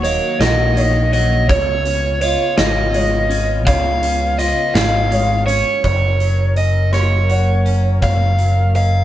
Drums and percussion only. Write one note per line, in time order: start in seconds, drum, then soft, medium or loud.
0.04 closed hi-hat medium
0.41 snare loud
0.41 closed hi-hat medium
0.77 closed hi-hat medium
1.13 closed hi-hat medium
1.49 kick medium
1.49 closed hi-hat medium
1.85 closed hi-hat medium
2.21 closed hi-hat medium
2.58 snare loud
2.58 closed hi-hat medium
2.94 closed hi-hat medium
3.31 closed hi-hat medium
3.67 kick loud
3.67 closed hi-hat medium
4.03 closed hi-hat medium
4.39 closed hi-hat medium
4.75 snare loud
4.75 closed hi-hat medium
5.12 closed hi-hat medium
5.48 closed hi-hat medium
5.84 kick medium
5.84 closed hi-hat soft
6.20 closed hi-hat soft
6.56 closed hi-hat soft
6.93 cross-stick medium
6.93 closed hi-hat medium
7.30 closed hi-hat soft
7.66 closed hi-hat soft
8.02 kick medium
8.02 closed hi-hat medium
8.39 closed hi-hat soft
8.75 closed hi-hat soft